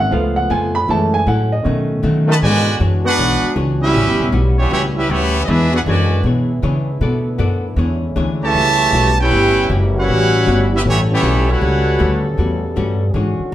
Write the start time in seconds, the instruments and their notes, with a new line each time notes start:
Already playing: upright bass G#1
0.00 grand piano F#5
0.11 upright bass C#2, hollow-body jazz guitar C#3 B3 F4 A4, grand piano F3 A3 B3 F5
0.36 grand piano F#5
0.50 upright bass F2, hollow-body jazz guitar C#3 B3 F4 A4, grand piano G#5
0.75 grand piano B5
0.88 upright bass F#2, grand piano E3 G#3 A3 A5, hollow-body jazz guitar F#3 C#4 E4 A4
1.14 grand piano G#5
1.27 upright bass A2, hollow-body jazz guitar F#3 C#4 E4 A4, grand piano F#5
1.52 grand piano D#5
1.63 hollow-body jazz guitar B2 F#3 A3 D#4, upright bass B2, grand piano D#3 A3 C#4
2.03 hollow-body jazz guitar B2 F#3 A3 D#4, upright bass D#3
2.27 trombone section D#3 F#3 A3, trumpet section F#4 B4 D#5 A5
2.41 upright bass G#2, trombone section B2 D3 G#3 B3 D4 F#4, hollow-body jazz guitar E3 D4 G#4 C#5, trumpet section F#4 B4 D5 G#5
2.80 upright bass F#2, hollow-body jazz guitar E3 D4 G#4 C#5
3.04 trombone section B3 D4 F#4, trumpet section D4 G#4 B4 F#5
3.17 upright bass B1, hollow-body jazz guitar E3 D4 G#4 C#5
3.43 muted upright bass stroke
3.56 upright bass C#2, hollow-body jazz guitar E3 D4 G#4 C#5
3.81 trombone section G3 C#4 E4, trumpet section C#4 G4 B4 E5
3.93 upright bass A1, hollow-body jazz guitar A2 G3 C#4 F#4, trombone section C#3 G3 B3 E4
4.07 upright bass G1
4.20 upright bass E1
4.32 upright bass B1, hollow-body jazz guitar A2 G3 C#4 F#4
4.59 trombone section E3 G3 C#4, trumpet section B3 E4 G4 C#5
4.71 upright bass C#2, hollow-body jazz guitar A2 G3 C#4 F#4, trombone section E3 G3 C#4, trumpet section B3 E4 G4 C#5
4.95 trombone section G3 C#4 E4, trumpet section C#4 G4 B4 E5
5.09 upright bass D2, hollow-body jazz guitar A2 G3 C#4 F#4, trombone section E3 G3 C#4, trumpet section B3 E4 G4 C#5
5.45 upright bass E2, trombone section E3 G#3 B3 E4, hollow-body jazz guitar E3 D4 G#4, trumpet section D#5
5.49 trumpet section D4 G#4 B4 E5, hollow-body jazz guitar C#5
5.72 trombone section B3 D4 F#4, trumpet section D4 G#4 B4 F#5
5.86 upright bass F#2, trombone section B2 D3 G#3, hollow-body jazz guitar E3 D4 G#4 C#5, trumpet section F#4 B4 D5 G#5
6.24 upright bass B2, hollow-body jazz guitar E3 D4 G#4 C#5
6.62 upright bass C#3, hollow-body jazz guitar E3 D4 G#4 C#5
6.99 upright bass B2, trombone section D3 A3 B3, hollow-body jazz guitar B3 F#4 A4 D5
7.38 upright bass F#2, hollow-body jazz guitar B3 F#4 A4 D5
7.76 upright bass E2, hollow-body jazz guitar E3 D4 G#4 C#5, trombone section G#3 C#4
8.16 upright bass D2, hollow-body jazz guitar E3 D4 G#4 C#5
8.43 trombone section C#3 E3 A3, trumpet section G4 C#5 E5 A5
8.52 upright bass C#2, hollow-body jazz guitar A2 G3 C#4 F#4, trombone section C#3 G3 B3
8.92 upright bass B1, hollow-body jazz guitar A2 G3 C#4 F#4
9.21 trombone section C#4 E4 G4, trumpet section E4 B4 C#5 G5
9.31 upright bass G1, hollow-body jazz guitar A2 G3 C#4 F#4
9.70 upright bass F#1, hollow-body jazz guitar A2 G3 C#4 F#4
9.96 trombone section G3 C#4 F#4, trumpet section E4 B4 C#5 F#5
10.08 upright bass A1, hollow-body jazz guitar A2 G3 C#4 F#4
10.46 upright bass G1, hollow-body jazz guitar A2 G3 C#4 F#4
10.72 trombone section G3 C#4 E4, trumpet section C#4 E5
10.76 trumpet section G4 B4
10.83 upright bass A1, hollow-body jazz guitar A2 G3 C#4 F#4, trombone section E3 G3 C#4 A4
10.89 trumpet section B3 E4 G4 C#5
11.11 trombone section E3 G3 C#4, trumpet section B3 E4 G4 C#5
11.22 upright bass B1, hollow-body jazz guitar A2 G3 C#4 F#4
11.49 trombone section G3 C#4 F#4, trumpet section E4 B4 C#5 F#5
11.61 upright bass C#2, hollow-body jazz guitar A2 G3 C#4 F#4
11.99 upright bass D2, hollow-body jazz guitar A2 G3 C#4 F#4
12.37 upright bass E2, hollow-body jazz guitar A2 G3 C#4 F#4
12.76 upright bass G2, hollow-body jazz guitar A2 G3 C#4 F#4
13.14 upright bass G#2, trombone section D3 G#3 C#4 F#4, hollow-body jazz guitar E3 D4 G#4 C#5
13.39 muted upright bass stroke